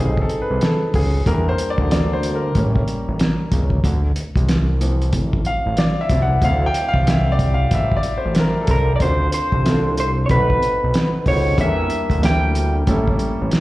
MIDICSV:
0, 0, Header, 1, 5, 480
1, 0, Start_track
1, 0, Key_signature, -1, "minor"
1, 0, Tempo, 645161
1, 937, Time_signature, 4, 2, 24, 8
1, 10120, End_track
2, 0, Start_track
2, 0, Title_t, "Clean electric guitar"
2, 0, Program_c, 0, 27
2, 6480, Note_on_c, 0, 70, 72
2, 6662, Note_off_c, 0, 70, 0
2, 6665, Note_on_c, 0, 74, 67
2, 6701, Note_off_c, 0, 74, 0
2, 6711, Note_on_c, 0, 72, 85
2, 6928, Note_off_c, 0, 72, 0
2, 6949, Note_on_c, 0, 72, 79
2, 7430, Note_off_c, 0, 72, 0
2, 7439, Note_on_c, 0, 72, 74
2, 7490, Note_off_c, 0, 72, 0
2, 7633, Note_on_c, 0, 73, 60
2, 7665, Note_off_c, 0, 73, 0
2, 7669, Note_on_c, 0, 71, 82
2, 8389, Note_off_c, 0, 71, 0
2, 8392, Note_on_c, 0, 73, 79
2, 8631, Note_off_c, 0, 73, 0
2, 8636, Note_on_c, 0, 76, 97
2, 9113, Note_off_c, 0, 76, 0
2, 9116, Note_on_c, 0, 79, 92
2, 9796, Note_off_c, 0, 79, 0
2, 10120, End_track
3, 0, Start_track
3, 0, Title_t, "Upright piano"
3, 0, Program_c, 1, 0
3, 0, Note_on_c, 1, 57, 56
3, 0, Note_on_c, 1, 60, 50
3, 0, Note_on_c, 1, 63, 58
3, 0, Note_on_c, 1, 68, 83
3, 133, Control_c, 1, 64, 127
3, 150, Note_off_c, 1, 68, 0
3, 160, Note_on_c, 1, 69, 81
3, 310, Note_on_c, 1, 71, 79
3, 312, Note_off_c, 1, 69, 0
3, 320, Note_off_c, 1, 57, 0
3, 323, Note_off_c, 1, 60, 0
3, 325, Note_off_c, 1, 63, 0
3, 467, Note_on_c, 1, 69, 81
3, 468, Note_off_c, 1, 71, 0
3, 709, Note_off_c, 1, 69, 0
3, 710, Note_on_c, 1, 68, 86
3, 939, Note_on_c, 1, 55, 51
3, 944, Note_on_c, 1, 58, 45
3, 946, Control_c, 1, 64, 0
3, 946, Note_on_c, 1, 70, 89
3, 948, Note_on_c, 1, 62, 58
3, 950, Note_off_c, 1, 68, 0
3, 1085, Control_c, 1, 64, 127
3, 1106, Note_off_c, 1, 70, 0
3, 1106, Note_on_c, 1, 72, 98
3, 1266, Note_off_c, 1, 72, 0
3, 1267, Note_on_c, 1, 74, 97
3, 1419, Note_off_c, 1, 74, 0
3, 1430, Note_on_c, 1, 74, 91
3, 1573, Note_off_c, 1, 74, 0
3, 1586, Note_on_c, 1, 72, 87
3, 1730, Note_off_c, 1, 72, 0
3, 1749, Note_on_c, 1, 70, 75
3, 1868, Note_off_c, 1, 55, 0
3, 1870, Note_off_c, 1, 58, 0
3, 1872, Note_off_c, 1, 62, 0
3, 1907, Control_c, 1, 64, 0
3, 1907, Note_on_c, 1, 55, 52
3, 1913, Note_on_c, 1, 58, 53
3, 1917, Note_on_c, 1, 61, 65
3, 2017, Control_c, 1, 64, 127
3, 2592, Note_off_c, 1, 55, 0
3, 2595, Note_off_c, 1, 58, 0
3, 2597, Note_off_c, 1, 61, 0
3, 2866, Control_c, 1, 64, 0
3, 2913, Note_off_c, 1, 70, 0
3, 2985, Control_c, 1, 64, 127
3, 3576, Note_on_c, 1, 53, 52
3, 3582, Note_on_c, 1, 60, 46
3, 3586, Note_on_c, 1, 52, 59
3, 4066, Note_on_c, 1, 77, 88
3, 4305, Note_on_c, 1, 74, 88
3, 4308, Note_off_c, 1, 77, 0
3, 4465, Note_off_c, 1, 74, 0
3, 4471, Note_on_c, 1, 76, 86
3, 4530, Note_off_c, 1, 53, 0
3, 4534, Note_off_c, 1, 60, 0
3, 4541, Note_on_c, 1, 53, 48
3, 4545, Note_on_c, 1, 60, 44
3, 4545, Note_on_c, 1, 64, 58
3, 4628, Note_off_c, 1, 76, 0
3, 4629, Note_on_c, 1, 78, 92
3, 4755, Note_off_c, 1, 53, 0
3, 4757, Note_off_c, 1, 60, 0
3, 4757, Note_off_c, 1, 64, 0
3, 4781, Note_on_c, 1, 53, 53
3, 4785, Note_on_c, 1, 60, 50
3, 4787, Note_off_c, 1, 78, 0
3, 4788, Note_on_c, 1, 64, 58
3, 4795, Note_on_c, 1, 77, 106
3, 4950, Note_off_c, 1, 77, 0
3, 4957, Note_on_c, 1, 79, 105
3, 5111, Note_off_c, 1, 79, 0
3, 5122, Note_on_c, 1, 77, 101
3, 5274, Note_off_c, 1, 77, 0
3, 5281, Note_on_c, 1, 76, 90
3, 5318, Note_off_c, 1, 76, 0
3, 5445, Note_on_c, 1, 74, 94
3, 5471, Note_off_c, 1, 52, 0
3, 5581, Note_off_c, 1, 74, 0
3, 5611, Note_on_c, 1, 77, 92
3, 5758, Note_off_c, 1, 77, 0
3, 5765, Note_on_c, 1, 76, 97
3, 5915, Note_off_c, 1, 76, 0
3, 5926, Note_on_c, 1, 74, 91
3, 6075, Note_off_c, 1, 74, 0
3, 6083, Note_on_c, 1, 72, 78
3, 6234, Note_off_c, 1, 72, 0
3, 6245, Note_on_c, 1, 70, 81
3, 6381, Note_off_c, 1, 70, 0
3, 6409, Note_on_c, 1, 69, 70
3, 6617, Note_off_c, 1, 69, 0
3, 6669, Note_off_c, 1, 53, 0
3, 6671, Note_off_c, 1, 60, 0
3, 6673, Note_off_c, 1, 64, 0
3, 6707, Control_c, 1, 64, 0
3, 6711, Note_on_c, 1, 57, 62
3, 6713, Note_on_c, 1, 60, 61
3, 6717, Note_on_c, 1, 62, 62
3, 6722, Note_on_c, 1, 72, 75
3, 6723, Note_on_c, 1, 65, 61
3, 6834, Control_c, 1, 64, 127
3, 7103, Note_off_c, 1, 57, 0
3, 7104, Note_off_c, 1, 60, 0
3, 7106, Note_off_c, 1, 62, 0
3, 7109, Note_off_c, 1, 65, 0
3, 7109, Note_off_c, 1, 72, 0
3, 7182, Note_on_c, 1, 57, 65
3, 7183, Note_on_c, 1, 60, 58
3, 7186, Note_on_c, 1, 62, 61
3, 7192, Note_on_c, 1, 65, 58
3, 7195, Note_on_c, 1, 69, 69
3, 7645, Note_off_c, 1, 57, 0
3, 7647, Note_off_c, 1, 60, 0
3, 7657, Note_on_c, 1, 57, 78
3, 7659, Note_on_c, 1, 60, 68
3, 7661, Note_off_c, 1, 62, 0
3, 7664, Note_off_c, 1, 65, 0
3, 7664, Note_on_c, 1, 63, 69
3, 7665, Control_c, 1, 64, 0
3, 7666, Note_off_c, 1, 69, 0
3, 7666, Note_on_c, 1, 66, 67
3, 7672, Note_on_c, 1, 71, 83
3, 7787, Control_c, 1, 64, 127
3, 8254, Note_off_c, 1, 57, 0
3, 8255, Note_off_c, 1, 60, 0
3, 8257, Note_off_c, 1, 63, 0
3, 8258, Note_off_c, 1, 66, 0
3, 8261, Note_off_c, 1, 71, 0
3, 8374, Note_on_c, 1, 57, 68
3, 8379, Note_on_c, 1, 60, 61
3, 8382, Note_on_c, 1, 63, 58
3, 8387, Note_on_c, 1, 66, 56
3, 8390, Note_on_c, 1, 72, 72
3, 8575, Note_off_c, 1, 57, 0
3, 8577, Note_off_c, 1, 60, 0
3, 8579, Note_off_c, 1, 63, 0
3, 8581, Note_off_c, 1, 66, 0
3, 8583, Note_off_c, 1, 72, 0
3, 8611, Note_on_c, 1, 55, 64
3, 8616, Note_on_c, 1, 62, 61
3, 8617, Note_on_c, 1, 58, 60
3, 8618, Note_on_c, 1, 64, 61
3, 8626, Control_c, 1, 64, 0
3, 8626, Note_on_c, 1, 69, 62
3, 8672, Note_on_c, 1, 70, 73
3, 8680, Note_off_c, 1, 69, 0
3, 8746, Control_c, 1, 64, 127
3, 9013, Note_off_c, 1, 55, 0
3, 9015, Note_off_c, 1, 62, 0
3, 9016, Note_off_c, 1, 58, 0
3, 9017, Note_off_c, 1, 64, 0
3, 9043, Note_off_c, 1, 70, 0
3, 9090, Note_on_c, 1, 55, 65
3, 9095, Note_on_c, 1, 58, 62
3, 9099, Note_on_c, 1, 62, 58
3, 9101, Note_on_c, 1, 64, 61
3, 9102, Note_on_c, 1, 67, 74
3, 9565, Note_off_c, 1, 55, 0
3, 9568, Note_off_c, 1, 58, 0
3, 9573, Note_off_c, 1, 64, 0
3, 9577, Note_on_c, 1, 55, 77
3, 9578, Note_off_c, 1, 62, 0
3, 9579, Note_off_c, 1, 67, 0
3, 9580, Note_on_c, 1, 58, 70
3, 9581, Note_on_c, 1, 61, 69
3, 9584, Note_on_c, 1, 64, 69
3, 9588, Control_c, 1, 64, 0
3, 9588, Note_on_c, 1, 69, 82
3, 9731, Control_c, 1, 64, 127
3, 10120, Note_off_c, 1, 55, 0
3, 10120, Note_off_c, 1, 58, 0
3, 10120, Note_off_c, 1, 61, 0
3, 10120, Note_off_c, 1, 64, 0
3, 10120, Note_off_c, 1, 69, 0
3, 10120, End_track
4, 0, Start_track
4, 0, Title_t, "Analog synth bass"
4, 0, Program_c, 2, 38
4, 0, Note_on_c, 2, 35, 95
4, 188, Note_off_c, 2, 35, 0
4, 376, Note_on_c, 2, 36, 86
4, 451, Note_off_c, 2, 36, 0
4, 706, Note_on_c, 2, 37, 86
4, 907, Note_off_c, 2, 37, 0
4, 946, Note_on_c, 2, 40, 105
4, 1147, Note_off_c, 2, 40, 0
4, 1332, Note_on_c, 2, 38, 89
4, 1873, Note_off_c, 2, 38, 0
4, 1910, Note_on_c, 2, 33, 96
4, 2110, Note_off_c, 2, 33, 0
4, 2293, Note_on_c, 2, 33, 91
4, 2369, Note_off_c, 2, 33, 0
4, 2627, Note_on_c, 2, 37, 89
4, 2828, Note_off_c, 2, 37, 0
4, 2865, Note_on_c, 2, 38, 101
4, 3067, Note_off_c, 2, 38, 0
4, 3249, Note_on_c, 2, 36, 84
4, 3826, Note_on_c, 2, 33, 92
4, 3837, Note_off_c, 2, 36, 0
4, 4027, Note_off_c, 2, 33, 0
4, 4213, Note_on_c, 2, 33, 99
4, 4288, Note_off_c, 2, 33, 0
4, 4543, Note_on_c, 2, 36, 90
4, 4746, Note_off_c, 2, 36, 0
4, 4780, Note_on_c, 2, 38, 101
4, 4984, Note_off_c, 2, 38, 0
4, 5169, Note_on_c, 2, 36, 89
4, 5711, Note_off_c, 2, 36, 0
4, 5750, Note_on_c, 2, 33, 94
4, 5949, Note_off_c, 2, 33, 0
4, 6140, Note_on_c, 2, 33, 86
4, 6213, Note_off_c, 2, 33, 0
4, 6466, Note_on_c, 2, 36, 98
4, 6668, Note_off_c, 2, 36, 0
4, 6705, Note_on_c, 2, 38, 112
4, 6907, Note_off_c, 2, 38, 0
4, 7094, Note_on_c, 2, 36, 84
4, 7634, Note_off_c, 2, 36, 0
4, 7668, Note_on_c, 2, 35, 94
4, 7868, Note_off_c, 2, 35, 0
4, 8064, Note_on_c, 2, 35, 87
4, 8135, Note_off_c, 2, 35, 0
4, 8387, Note_on_c, 2, 37, 83
4, 8588, Note_off_c, 2, 37, 0
4, 8624, Note_on_c, 2, 40, 101
4, 8826, Note_off_c, 2, 40, 0
4, 9009, Note_on_c, 2, 38, 92
4, 9551, Note_off_c, 2, 38, 0
4, 9586, Note_on_c, 2, 33, 96
4, 9787, Note_off_c, 2, 33, 0
4, 9980, Note_on_c, 2, 33, 89
4, 10053, Note_off_c, 2, 33, 0
4, 10120, End_track
5, 0, Start_track
5, 0, Title_t, "Drums"
5, 130, Note_on_c, 9, 36, 85
5, 204, Note_off_c, 9, 36, 0
5, 219, Note_on_c, 9, 42, 47
5, 293, Note_off_c, 9, 42, 0
5, 455, Note_on_c, 9, 42, 73
5, 467, Note_on_c, 9, 38, 112
5, 530, Note_off_c, 9, 42, 0
5, 541, Note_off_c, 9, 38, 0
5, 697, Note_on_c, 9, 46, 51
5, 699, Note_on_c, 9, 36, 87
5, 772, Note_off_c, 9, 46, 0
5, 774, Note_off_c, 9, 36, 0
5, 939, Note_on_c, 9, 36, 116
5, 942, Note_on_c, 9, 42, 85
5, 1013, Note_off_c, 9, 36, 0
5, 1016, Note_off_c, 9, 42, 0
5, 1178, Note_on_c, 9, 42, 68
5, 1253, Note_off_c, 9, 42, 0
5, 1324, Note_on_c, 9, 36, 78
5, 1398, Note_off_c, 9, 36, 0
5, 1423, Note_on_c, 9, 42, 89
5, 1428, Note_on_c, 9, 38, 100
5, 1497, Note_off_c, 9, 42, 0
5, 1502, Note_off_c, 9, 38, 0
5, 1660, Note_on_c, 9, 42, 64
5, 1735, Note_off_c, 9, 42, 0
5, 1897, Note_on_c, 9, 42, 73
5, 1900, Note_on_c, 9, 36, 86
5, 1971, Note_off_c, 9, 42, 0
5, 1974, Note_off_c, 9, 36, 0
5, 2050, Note_on_c, 9, 36, 85
5, 2125, Note_off_c, 9, 36, 0
5, 2140, Note_on_c, 9, 42, 48
5, 2214, Note_off_c, 9, 42, 0
5, 2377, Note_on_c, 9, 42, 74
5, 2388, Note_on_c, 9, 38, 116
5, 2451, Note_off_c, 9, 42, 0
5, 2462, Note_off_c, 9, 38, 0
5, 2616, Note_on_c, 9, 42, 74
5, 2617, Note_on_c, 9, 36, 91
5, 2691, Note_off_c, 9, 36, 0
5, 2691, Note_off_c, 9, 42, 0
5, 2754, Note_on_c, 9, 36, 83
5, 2829, Note_off_c, 9, 36, 0
5, 2855, Note_on_c, 9, 36, 117
5, 2859, Note_on_c, 9, 42, 81
5, 2930, Note_off_c, 9, 36, 0
5, 2934, Note_off_c, 9, 42, 0
5, 3094, Note_on_c, 9, 42, 74
5, 3169, Note_off_c, 9, 42, 0
5, 3240, Note_on_c, 9, 36, 89
5, 3251, Note_on_c, 9, 42, 39
5, 3315, Note_off_c, 9, 36, 0
5, 3325, Note_off_c, 9, 42, 0
5, 3337, Note_on_c, 9, 42, 83
5, 3342, Note_on_c, 9, 38, 98
5, 3412, Note_off_c, 9, 42, 0
5, 3417, Note_off_c, 9, 38, 0
5, 3578, Note_on_c, 9, 42, 70
5, 3653, Note_off_c, 9, 42, 0
5, 3732, Note_on_c, 9, 42, 37
5, 3806, Note_off_c, 9, 42, 0
5, 3814, Note_on_c, 9, 42, 77
5, 3816, Note_on_c, 9, 36, 96
5, 3888, Note_off_c, 9, 42, 0
5, 3891, Note_off_c, 9, 36, 0
5, 3967, Note_on_c, 9, 36, 82
5, 4042, Note_off_c, 9, 36, 0
5, 4054, Note_on_c, 9, 42, 52
5, 4128, Note_off_c, 9, 42, 0
5, 4292, Note_on_c, 9, 42, 75
5, 4303, Note_on_c, 9, 38, 109
5, 4366, Note_off_c, 9, 42, 0
5, 4377, Note_off_c, 9, 38, 0
5, 4534, Note_on_c, 9, 42, 69
5, 4535, Note_on_c, 9, 36, 91
5, 4609, Note_off_c, 9, 36, 0
5, 4609, Note_off_c, 9, 42, 0
5, 4774, Note_on_c, 9, 36, 123
5, 4776, Note_on_c, 9, 42, 87
5, 4849, Note_off_c, 9, 36, 0
5, 4851, Note_off_c, 9, 42, 0
5, 5017, Note_on_c, 9, 42, 73
5, 5092, Note_off_c, 9, 42, 0
5, 5161, Note_on_c, 9, 36, 86
5, 5236, Note_off_c, 9, 36, 0
5, 5261, Note_on_c, 9, 42, 89
5, 5266, Note_on_c, 9, 38, 104
5, 5335, Note_off_c, 9, 42, 0
5, 5340, Note_off_c, 9, 38, 0
5, 5498, Note_on_c, 9, 36, 89
5, 5499, Note_on_c, 9, 42, 66
5, 5572, Note_off_c, 9, 36, 0
5, 5573, Note_off_c, 9, 42, 0
5, 5737, Note_on_c, 9, 42, 76
5, 5739, Note_on_c, 9, 36, 95
5, 5811, Note_off_c, 9, 42, 0
5, 5814, Note_off_c, 9, 36, 0
5, 5889, Note_on_c, 9, 36, 85
5, 5964, Note_off_c, 9, 36, 0
5, 5975, Note_on_c, 9, 42, 54
5, 6049, Note_off_c, 9, 42, 0
5, 6210, Note_on_c, 9, 42, 77
5, 6221, Note_on_c, 9, 38, 123
5, 6284, Note_off_c, 9, 42, 0
5, 6295, Note_off_c, 9, 38, 0
5, 6452, Note_on_c, 9, 42, 71
5, 6457, Note_on_c, 9, 36, 92
5, 6526, Note_off_c, 9, 42, 0
5, 6532, Note_off_c, 9, 36, 0
5, 6697, Note_on_c, 9, 36, 110
5, 6697, Note_on_c, 9, 42, 82
5, 6771, Note_off_c, 9, 42, 0
5, 6772, Note_off_c, 9, 36, 0
5, 6936, Note_on_c, 9, 42, 69
5, 7011, Note_off_c, 9, 42, 0
5, 7085, Note_on_c, 9, 36, 82
5, 7159, Note_off_c, 9, 36, 0
5, 7185, Note_on_c, 9, 42, 84
5, 7190, Note_on_c, 9, 38, 94
5, 7259, Note_off_c, 9, 42, 0
5, 7264, Note_off_c, 9, 38, 0
5, 7421, Note_on_c, 9, 42, 65
5, 7495, Note_off_c, 9, 42, 0
5, 7658, Note_on_c, 9, 42, 70
5, 7660, Note_on_c, 9, 36, 90
5, 7732, Note_off_c, 9, 42, 0
5, 7735, Note_off_c, 9, 36, 0
5, 7812, Note_on_c, 9, 36, 81
5, 7886, Note_off_c, 9, 36, 0
5, 7905, Note_on_c, 9, 42, 51
5, 7979, Note_off_c, 9, 42, 0
5, 8139, Note_on_c, 9, 42, 71
5, 8151, Note_on_c, 9, 38, 116
5, 8214, Note_off_c, 9, 42, 0
5, 8225, Note_off_c, 9, 38, 0
5, 8376, Note_on_c, 9, 46, 49
5, 8377, Note_on_c, 9, 36, 89
5, 8450, Note_off_c, 9, 46, 0
5, 8451, Note_off_c, 9, 36, 0
5, 8615, Note_on_c, 9, 36, 113
5, 8617, Note_on_c, 9, 42, 87
5, 8690, Note_off_c, 9, 36, 0
5, 8692, Note_off_c, 9, 42, 0
5, 8852, Note_on_c, 9, 42, 66
5, 8926, Note_off_c, 9, 42, 0
5, 9001, Note_on_c, 9, 36, 83
5, 9007, Note_on_c, 9, 42, 42
5, 9075, Note_off_c, 9, 36, 0
5, 9082, Note_off_c, 9, 42, 0
5, 9100, Note_on_c, 9, 42, 84
5, 9105, Note_on_c, 9, 38, 100
5, 9175, Note_off_c, 9, 42, 0
5, 9180, Note_off_c, 9, 38, 0
5, 9339, Note_on_c, 9, 42, 65
5, 9413, Note_off_c, 9, 42, 0
5, 9576, Note_on_c, 9, 42, 77
5, 9578, Note_on_c, 9, 36, 86
5, 9650, Note_off_c, 9, 42, 0
5, 9652, Note_off_c, 9, 36, 0
5, 9728, Note_on_c, 9, 36, 80
5, 9802, Note_off_c, 9, 36, 0
5, 9814, Note_on_c, 9, 42, 50
5, 9889, Note_off_c, 9, 42, 0
5, 10054, Note_on_c, 9, 42, 74
5, 10066, Note_on_c, 9, 38, 103
5, 10120, Note_off_c, 9, 38, 0
5, 10120, Note_off_c, 9, 42, 0
5, 10120, End_track
0, 0, End_of_file